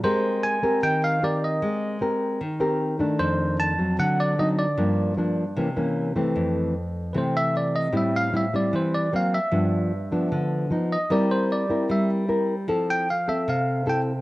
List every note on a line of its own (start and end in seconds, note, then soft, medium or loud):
0.04 0.81 G#3 medium
0.04 0.60 C4 medium
0.04 0.60 G4 soft
0.04 0.60 A#4 medium
0.04 0.44 C5 medium
0.43 0.80 G#5 loud
0.63 1.19 C4 medium
0.63 1.19 G4 medium
0.63 1.19 A#4 medium
0.83 1.60 D#3 medium
0.83 1.01 G5 loud
1.04 1.23 F5 medium
1.22 1.98 C4 medium
1.22 1.98 G4 medium
1.22 1.99 A#4 medium
1.22 1.43 D5 medium
1.44 1.98 D#5 medium
1.62 2.39 G#3 medium
2.01 2.40 C4 medium
2.01 2.41 G4 soft
2.01 2.41 A#4 medium
2.41 2.98 D#3 medium
2.60 2.96 C4 medium
2.60 2.96 G4 medium
2.60 2.97 A#4 medium
2.99 3.75 D#3 medium
2.99 3.75 A3 medium
2.99 3.76 D4 medium
3.19 3.96 F2 medium
3.19 3.56 C5 loud
3.60 3.96 A5 loud
3.78 4.35 F#3 medium
3.78 4.35 C4 medium
3.99 4.76 D3 medium
3.99 4.19 F#5 medium
4.20 4.39 D5 medium
4.38 4.65 F#3 medium
4.38 4.65 C4 medium
4.38 4.65 D#4 medium
4.38 4.48 D#5 medium
4.59 5.13 D5 medium
4.77 5.55 G2 medium
4.77 5.14 F3 soft
4.77 5.14 A#3 medium
4.77 5.14 D4 medium
5.17 5.43 F3 medium
5.17 5.44 A#3 medium
5.17 5.44 D4 medium
5.56 6.34 C3 medium
5.56 5.68 E3 medium
5.56 5.68 A#3 medium
5.56 5.68 C#4 medium
5.76 6.13 E3 medium
5.76 6.13 A#3 medium
5.76 6.13 C#4 medium
6.16 6.73 E3 medium
6.16 6.74 A3 medium
6.16 6.74 C4 medium
6.36 7.12 F2 medium
7.13 7.92 C3 medium
7.13 7.90 E3 soft
7.13 7.90 A3 medium
7.13 7.91 C4 medium
7.13 7.15 B4 soft
7.18 7.35 C5 medium
7.37 7.55 E5 medium
7.57 7.75 D5 medium
7.76 7.94 D#5 medium
7.93 8.70 A2 medium
7.93 8.29 G3 soft
7.93 8.30 C4 medium
7.93 8.30 E4 medium
7.97 8.14 E5 medium
8.16 8.34 F5 medium
8.33 8.44 G3 soft
8.33 8.45 C4 medium
8.33 8.45 E4 medium
8.37 8.54 E5 medium
8.54 9.09 G3 medium
8.54 9.09 C4 medium
8.54 9.10 E4 medium
8.54 8.73 D5 medium
8.73 9.10 E3 medium
8.73 8.93 C5 medium
8.95 9.13 D5 medium
9.13 9.38 F#3 medium
9.13 9.38 A#3 medium
9.13 9.38 C4 medium
9.13 9.33 F5 medium
9.34 10.28 E5 medium
9.52 10.29 G2 medium
9.52 9.91 F3 medium
9.52 9.91 B3 soft
9.52 9.91 D4 medium
10.12 10.67 F3 medium
10.12 10.68 B3 medium
10.12 10.68 D4 medium
10.32 10.69 D3 medium
10.70 10.96 F3 medium
10.70 10.96 B3 soft
10.70 10.96 D#4 medium
10.93 11.10 D#5 medium
11.10 11.87 G3 medium
11.10 11.66 C4 medium
11.10 11.66 E4 soft
11.10 11.67 A#4 medium
11.10 11.30 D5 medium
11.31 11.50 C5 medium
11.52 11.88 D5 medium
11.69 12.25 C4 soft
11.69 12.25 E4 medium
11.69 12.26 A#4 medium
11.89 12.66 G3 medium
11.89 12.09 E5 medium
12.28 12.54 C4 soft
12.28 12.54 E4 soft
12.28 12.54 A#4 medium
12.68 13.45 F3 medium
12.68 13.07 C4 medium
12.68 13.07 E4 medium
12.68 13.08 A4 medium
12.90 13.08 G5 loud
13.10 13.28 F5 medium
13.28 13.84 C4 medium
13.28 13.84 A4 medium
13.28 13.47 E5 medium
13.48 14.21 C3 medium
13.48 13.85 F5 medium
13.86 14.12 C4 medium
13.86 14.12 E4 medium
13.86 14.12 A4 medium
13.86 14.00 G5 medium